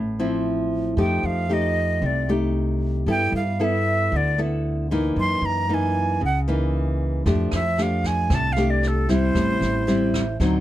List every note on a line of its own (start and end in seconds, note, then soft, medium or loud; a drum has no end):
0.00 0.93 A1 medium
0.00 0.95 A2 soft
0.19 0.94 F3 medium
0.19 0.94 C4 medium
0.19 0.94 E4 medium
0.97 1.22 F2 medium
0.97 2.00 F3 soft
0.97 1.46 A3 soft
0.97 1.46 D#4 medium
0.97 1.46 G4 medium
0.97 1.27 G5 medium
1.23 1.98 F2 medium
1.23 1.55 F5 medium
1.49 2.24 A3 soft
1.49 2.24 D#4 soft
1.49 2.25 G4 medium
1.49 2.07 D#5 medium
2.02 3.03 C2 medium
2.02 3.05 C3 medium
2.06 2.30 D5 medium
2.29 3.03 A3 medium
2.29 3.04 D#4 medium
2.29 3.03 G4 medium
3.06 3.31 G2 medium
3.06 4.09 G3 soft
3.06 3.41 B3 soft
3.06 3.41 E4 soft
3.06 3.41 A4 medium
3.06 3.33 G5 medium
3.32 4.07 G2 medium
3.32 3.65 F5 medium
3.59 4.34 B3 soft
3.59 4.34 E4 medium
3.59 4.35 A4 medium
3.64 4.18 E5 medium
4.12 5.12 D2 medium
4.12 5.15 D3 medium
4.16 4.40 D5 medium
4.38 4.86 B3 medium
4.38 4.87 E4 medium
4.38 4.87 A4 medium
4.91 5.65 E3 medium
4.91 5.66 A#3 medium
4.91 5.65 D#4 medium
5.16 5.41 F#2 medium
5.16 6.19 F#2 soft
5.16 5.47 C6 medium
5.41 6.17 F#2 medium
5.46 5.75 A#5 medium
5.69 6.21 E3 soft
5.69 6.21 A#3 medium
5.69 6.21 D#4 medium
5.74 6.24 G#5 medium
6.21 7.22 C#2 medium
6.21 7.23 C#3 soft
6.25 6.40 F#5 medium
6.48 7.22 E3 medium
6.48 7.22 A#3 medium
6.48 7.22 D#4 medium
7.26 7.50 F2 medium
7.26 8.28 F3 medium
7.26 7.60 A3 soft
7.26 7.60 D4 soft
7.26 7.60 G4 medium
7.26 kick medium
7.26 snare soft
7.51 8.27 F2 medium
7.51 7.84 E5 medium
7.51 cross-stick medium
7.51 snare soft
7.78 8.53 A3 soft
7.78 8.53 D4 medium
7.78 8.53 G4 medium
7.78 snare soft
7.82 8.08 F5 medium
8.04 8.36 G#5 medium
8.04 kick soft
8.04 snare soft
8.30 9.31 C2 medium
8.30 9.33 C3 medium
8.30 kick medium
8.30 cross-stick medium
8.30 snare soft
8.34 8.54 A5 medium
8.53 8.72 F5 medium
8.53 snare soft
8.57 9.05 A3 medium
8.57 9.05 D4 medium
8.57 9.06 G4 medium
8.70 8.89 D5 medium
8.83 snare soft
8.88 9.11 A4 medium
9.09 9.83 G3 medium
9.09 9.84 C4 medium
9.09 9.84 E4 medium
9.09 10.38 C5 medium
9.09 kick soft
9.09 snare soft
9.35 9.60 A1 medium
9.35 10.37 A2 soft
9.35 kick medium
9.35 cross-stick soft
9.35 snare soft
9.61 10.36 A1 medium
9.61 snare soft
9.87 10.23 G3 medium
9.87 10.23 C4 medium
9.87 10.23 E4 medium
9.87 snare soft
10.14 kick soft
10.14 cross-stick medium
10.14 snare soft
10.40 10.60 D2 medium
10.40 10.60 D3 medium
10.40 10.60 F#3 medium
10.40 10.60 C4 medium
10.40 10.60 D#4 medium
10.40 kick soft
10.40 snare soft